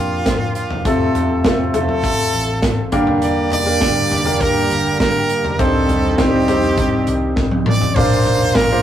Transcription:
Already playing: F2 A#2 F3 A#3 D4 F4 G4 A#4
0.26 kick, snare, closed hi-hat
0.55 F4, closed hi-hat
0.71 floor tom
0.85 F1 C3 A3 C4 F4 A4, kick, closed hi-hat
1.15 closed hi-hat, floor tom
1.44 F1 A3 C4 F4 A4, kick, snare, closed hi-hat
1.74 A3 C4 F4 A4, closed hi-hat, floor tom
1.89 floor tom
2.04 kick, closed hi-hat
2.33 A1, closed hi-hat
2.62 kick, snare, closed hi-hat
2.92 G1 G2 D3 A#3 D4 G4 A#4, kick, closed hi-hat
3.07 floor tom
3.22 D3 G3 A#3 G4 D5, closed hi-hat
3.52 D5, closed hi-hat, floor tom
3.66 A#3 D4 G4 A#4
3.81 G1, kick, snare, closed hi-hat
4.11 closed hi-hat, floor tom
4.25 A#3 D4 G4 A#4, floor tom
4.41 A#4, kick, closed hi-hat
4.70 G1, closed hi-hat
5.00 A#4, kick, snare, closed hi-hat
5.29 closed hi-hat
5.45 floor tom
5.59 C2 G2 D#3 G3 C4 D#4 G4 A4 C5, kick, closed hi-hat
5.89 closed hi-hat, floor tom
6.18 C2 C4 D#4 G4 C5, kick, snare, closed hi-hat
6.48 C4 D#4 G4 C5, closed hi-hat, floor tom
6.78 kick, closed hi-hat
7.07 C2, closed hi-hat
7.36 kick, snare
7.51 high tom
7.66 A1 D5, mid tom
7.81 floor tom
7.95 A#1 A#2 F3 A#3 D4 F4 A#4 C5 D5, kick, crash
8.26 closed hi-hat, floor tom
8.41 closed hi-hat
8.55 A#1 A#4, kick, snare, closed hi-hat
8.71 A#3 D4 F4 A#4 C5

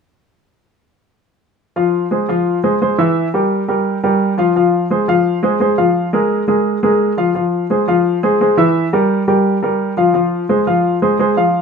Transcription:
1.76 F3 F4 F5
2.11 G#3 G#4 C5
2.29 F3 F4 F5
2.64 G#3 G#4 C5
2.82 G#3 G#4 C5
2.98 E3 E4 E5
3.34 G3 G4 A#4
3.68 G3 G4 A#4
4.03 G3 G4 A#4
4.38 F3 F4 F5
4.56 F3 F4 F5
4.91 G#3 G#4 C5
5.08 F3 F4 F5
5.43 G#3 G#4 C5
5.60 G#3 G#4 C5
5.78 F3 F4 F5
6.13 G#3 G#4 A#4
6.48 G#3 G#4 A#4
6.83 G#3 G#4 A#4
7.17 F3 F4 F5
7.35 F3 F4 F5
7.70 G#3 G#4 C5
7.88 F3 F4 F5
8.23 G#3 G#4 C5
8.41 G#3 G#4 C5
8.57 E3 E4 E5
8.93 G3 G4 A#4
9.28 G3 G4 A#4
9.63 G3 G4 A#4
9.97 F3 F4 F5
10.14 F3 F4 F5
10.49 G#3 G#4 C5
10.67 F3 F4 F5
11.02 G#3 G#4 C5
11.19 G#3 G#4 C5
11.37 F3 F4 F5

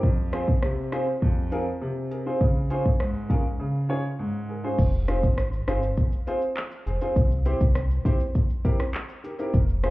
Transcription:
0.03 F2, kick
0.33 C4 F4 G#4 C5, cross-stick, closed hi-hat
0.48 kick
0.62 C3, cross-stick
0.92 C4 F4 G#4 C5, cross-stick, closed hi-hat
1.22 F2, kick
1.52 C4 F4 G#4 A#4, closed hi-hat
1.81 C3
2.11 G#4 A#4, closed hi-hat
2.26 C4 F4 G#4 C5
2.41 C#3, kick
2.70 C#4 F4 G#4 C5, closed hi-hat
2.86 kick
3.00 G#2, cross-stick
3.30 C#4 F4 G#4 A#4, kick, closed hi-hat
3.60 C#3
3.89 C#4 F4 G#4 C#5
4.19 G#2
4.49 G#4 A#4
4.64 C#4 F4 G#4 C5
4.79 F1, kick, crash, shaker
4.94 shaker
5.08 C4 F4 G#4 C5, cross-stick, closed hi-hat, shaker
5.23 G#1, kick, shaker
5.38 cross-stick, shaker
5.53 shaker
5.68 G1 C4 F4 G#4 C5, cross-stick, closed hi-hat, shaker
5.83 shaker
5.97 kick, shaker
6.12 shaker
6.27 C4 F4 G#4 C5, closed hi-hat, shaker
6.42 shaker
6.57 clap, shaker
6.71 shaker
6.86 F1 G#4 C5, closed hi-hat, shaker
7.01 C4 F4 G#4 C5, shaker
7.16 C2, kick, shaker
7.31 shaker
7.46 C4 E4 G4 C5, closed hi-hat, shaker
7.61 C2, kick, shaker
7.75 cross-stick, shaker
7.91 shaker
8.05 C4 E4 G4 C5, kick, closed hi-hat, shaker
8.20 shaker
8.35 kick, shaker
8.50 shaker
8.65 C4 E4 G4 A#4, kick, closed hi-hat, shaker
8.79 cross-stick, shaker
8.94 clap, shaker
9.09 shaker
9.24 G4 A#4, closed hi-hat, shaker
9.39 C4 E4 G4 A#4, shaker
9.54 F1, kick, shaker
9.69 shaker
9.83 C4 F4 G#4 C5, cross-stick, closed hi-hat, shaker

